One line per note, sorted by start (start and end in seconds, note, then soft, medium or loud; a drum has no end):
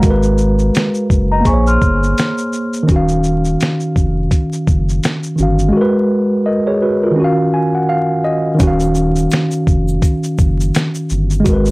0.00 0.71 G#1 medium
0.00 1.40 G#3 medium
0.00 1.42 F#4 medium
0.00 0.23 F5 soft
0.00 0.23 A#5 medium
0.00 kick loud
0.00 closed hi-hat medium
0.00 shaker medium
0.06 1.45 A#4 medium
0.10 1.47 B4 medium
0.23 shaker soft
0.38 shaker soft
0.59 shaker soft
0.75 finger snap medium
0.75 snare loud
0.75 closed hi-hat medium
0.75 shaker medium
0.94 shaker soft
1.10 1.43 F#1 medium
1.10 kick loud
1.10 shaker soft
1.31 1.46 D#5 medium
1.31 1.45 A#5 medium
1.41 2.83 A#3 medium
1.45 1.78 A#1 loud
1.45 2.85 G#4 medium
1.45 1.66 G#5 medium
1.45 1.66 C#6 medium
1.45 kick medium
1.45 closed hi-hat medium
1.45 shaker medium
1.49 2.87 C5 medium
1.53 2.90 C#5 medium
1.67 2.70 C6 medium
1.67 2.70 F6 medium
1.67 shaker soft
1.82 2.14 G1 medium
1.82 kick loud
1.82 shaker medium
2.03 shaker soft
2.18 finger snap medium
2.18 snare loud
2.18 closed hi-hat medium
2.18 shaker medium
2.38 shaker medium
2.53 shaker soft
2.73 shaker medium
2.83 5.32 D#3 medium
2.87 3.56 D#1 medium
2.87 5.34 C#4 medium
2.87 kick loud
2.87 closed hi-hat medium
2.87 shaker medium
2.92 5.36 F#4 medium
2.96 5.38 F5 medium
3.09 shaker soft
3.24 shaker soft
3.45 shaker soft
3.61 finger snap medium
3.61 snare loud
3.61 closed hi-hat medium
3.61 shaker medium
3.80 shaker soft
3.96 4.28 F1 medium
3.96 kick medium
3.96 shaker soft
4.31 kick medium
4.31 closed hi-hat medium
4.31 shaker medium
4.53 shaker soft
4.67 5.00 F#1 medium
4.67 kick loud
4.67 shaker medium
4.89 shaker soft
5.04 finger snap medium
5.04 snare loud
5.04 closed hi-hat medium
5.04 shaker medium
5.23 shaker soft
5.36 5.71 G1 medium
5.36 5.73 D#3 medium
5.36 5.74 C#4 soft
5.36 shaker soft
5.40 5.71 F#4 soft
5.40 5.76 F5 medium
5.59 shaker soft
5.69 7.11 G#3 medium
5.73 6.43 F#4 medium
5.77 6.46 A#4 medium
5.81 6.48 B4 medium
6.46 6.66 A#4 soft
6.46 6.66 D#5 medium
6.67 6.81 G#4 medium
6.67 6.81 C#5 medium
6.82 7.02 F#4 medium
6.82 7.02 B4 medium
7.03 7.37 F4 soft
7.03 7.37 A#4 medium
7.11 8.53 D#3 medium
7.16 8.56 C#4 medium
7.20 8.58 F#4 medium
7.24 7.88 F5 medium
7.54 7.73 G#5 medium
7.75 7.88 F#5 medium
7.89 8.22 F5 medium
8.25 8.58 D#5 medium
8.54 11.39 D#3 medium
8.59 9.28 D#1 loud
8.59 11.41 C#4 medium
8.59 kick loud
8.59 closed hi-hat medium
8.59 shaker medium
8.63 11.43 F#4 medium
8.67 11.45 F5 medium
8.80 shaker soft
8.81 shaker medium
8.95 shaker soft
9.16 shaker soft
9.18 shaker medium
9.31 finger snap medium
9.31 snare loud
9.31 closed hi-hat medium
9.31 shaker medium
9.51 shaker soft
9.67 10.00 F1 loud
9.67 kick medium
9.67 shaker soft
9.88 shaker medium
10.02 kick medium
10.02 closed hi-hat medium
10.02 shaker medium
10.23 shaker soft
10.38 10.71 F#1 medium
10.38 kick loud
10.38 shaker medium
10.60 shaker soft
10.60 shaker medium
10.75 finger snap medium
10.75 snare loud
10.75 closed hi-hat medium
10.75 shaker medium
10.95 shaker soft
10.95 shaker medium
11.10 11.43 G1 medium
11.10 shaker soft
11.30 shaker soft
11.32 shaker soft
11.40 11.71 G#3 medium
11.44 11.71 G#1 loud
11.44 11.71 F#4 medium
11.44 kick loud
11.44 closed hi-hat medium
11.44 shaker medium
11.49 11.71 A#4 medium
11.53 11.71 B4 medium
11.66 shaker soft
11.68 shaker medium